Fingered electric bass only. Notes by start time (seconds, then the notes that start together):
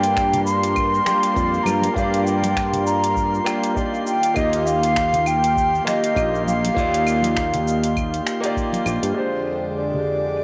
Already playing: G2
1.36 F2
1.66 G2
1.96 G2
4.36 D#2
6.16 A#1
6.76 D#2
8.86 A#1
9.03 G2